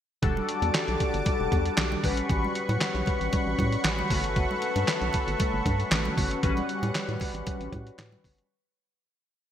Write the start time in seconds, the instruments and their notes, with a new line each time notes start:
0.22 analog synth bass E1, analog synth pad G3 F#5 A5 D6, analog polysynth G3 D4 F#4 A4, kick, closed hi-hat, low conga
0.37 high conga
0.49 closed hi-hat
0.62 analog synth bass E2, closed hi-hat, high conga
0.74 snare, clap, closed hi-hat
0.88 analog synth bass B1, closed hi-hat
1.00 kick, closed hi-hat
1.14 analog synth bass G1, closed hi-hat
1.26 kick, closed hi-hat, muted conga, high conga
1.40 analog synth bass E1
1.52 analog synth bass E2, kick, closed hi-hat, high conga
1.66 closed hi-hat
1.77 analog synth bass B1, snare, clap, closed hi-hat, muted conga
1.92 high conga
2.03 analog synth bass A1, analog polysynth G3 C#4 F#4 B4, analog synth pad B5 C#6, kick, open hi-hat, low conga
2.17 closed hi-hat
2.29 analog synth bass A1, kick, closed hi-hat, muted conga, low conga
2.44 high conga
2.55 closed hi-hat
2.69 analog synth bass A2, closed hi-hat, high conga
2.81 snare, clap, closed hi-hat, muted conga
2.95 analog synth bass B1, closed hi-hat
3.06 kick, closed hi-hat, muted conga
3.21 analog synth bass A1, closed hi-hat
3.33 kick, closed hi-hat, muted conga, high conga
3.47 analog synth bass A1
3.59 analog synth bass A2, kick, closed hi-hat, muted conga, high conga
3.72 closed hi-hat
3.84 analog synth bass A1, snare, clap, closed hi-hat, muted conga
3.99 high conga
4.10 analog synth bass G1, analog polysynth A3 C#4 F#4 B4, analog synth pad A4, kick, open hi-hat, muted conga, low conga
4.24 closed hi-hat
4.36 kick, closed hi-hat, low conga
4.51 high conga
4.62 closed hi-hat, muted conga
4.76 analog synth bass G2, closed hi-hat, high conga
4.88 snare, clap, closed hi-hat
5.01 analog synth bass B1, closed hi-hat
5.13 kick, closed hi-hat, muted conga
5.27 analog synth bass G1, closed hi-hat
5.40 kick, closed hi-hat, high conga
5.53 analog synth bass G1
5.66 analog synth bass G2, kick, closed hi-hat, muted conga, high conga
5.80 closed hi-hat
5.91 analog synth bass A1, snare, clap, closed hi-hat, muted conga
6.05 high conga
6.17 analog synth bass G1, kick, open hi-hat, low conga
6.31 closed hi-hat
6.42 analog synth bass A1, analog polysynth G3 C#4 F#4 B4, analog synth pad G3 F#5, kick, closed hi-hat, low conga
6.57 closed hi-hat, high conga
6.69 closed hi-hat
6.83 analog synth bass A2, closed hi-hat, high conga
6.95 snare, clap, closed hi-hat
7.09 analog synth bass A2, closed hi-hat
7.20 kick, open hi-hat, muted conga, low conga
7.34 analog synth bass A1, closed hi-hat
7.47 kick, closed hi-hat, muted conga, high conga
7.60 analog synth bass A1, closed hi-hat
7.72 analog synth bass A2, kick, closed hi-hat, high conga
7.87 closed hi-hat
7.98 analog synth bass A2, snare, clap, closed hi-hat
8.12 closed hi-hat, high conga
8.24 analog synth bass G1, kick, open hi-hat, muted conga, low conga
8.38 closed hi-hat